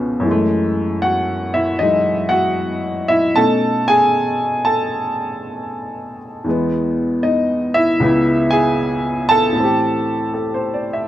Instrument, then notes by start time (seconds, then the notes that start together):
upright piano
Already playing: C#2 B2 F3 A3 B3 C#4
0.20 F#2 E3
0.27 G#3
0.31 A3
1.02 F#4 F#5
1.54 E4 E5
1.79 E3 F#3 G#3 D#4 D#5
2.29 F#4 F#5
3.08 E4 E5
3.35 B2 A3 C#4 D#4 A4 A5
3.88 G#4 G#5
4.65 A4 A5
6.44 E2 E3 G#3
6.49 B3
7.23 D#4 D#5
7.74 E4 E5
8.00 C#2 C#3 B3
8.05 E4
8.51 G#4 G#5
9.29 A4 A5
9.53 A2 E3
9.60 C4 G4
10.34 A4
10.54 C5
10.74 D5
10.93 E5